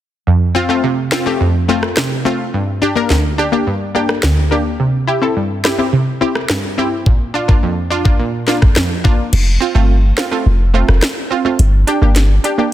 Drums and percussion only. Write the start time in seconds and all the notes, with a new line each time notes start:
1.12 cross-stick, snare
1.83 cross-stick
1.97 cross-stick, snare
3.10 snare
4.09 cross-stick
4.23 cross-stick, snare
5.65 cross-stick, snare
6.35 cross-stick
6.50 cross-stick, snare
7.06 kick
7.49 kick
8.05 kick
8.48 snare
8.62 kick, cross-stick
8.76 cross-stick, snare
9.05 kick
9.33 crash
10.18 cross-stick, snare
10.89 cross-stick
11.02 cross-stick, snare
11.59 closed hi-hat
11.88 closed hi-hat
12.16 snare, closed hi-hat
12.44 closed hi-hat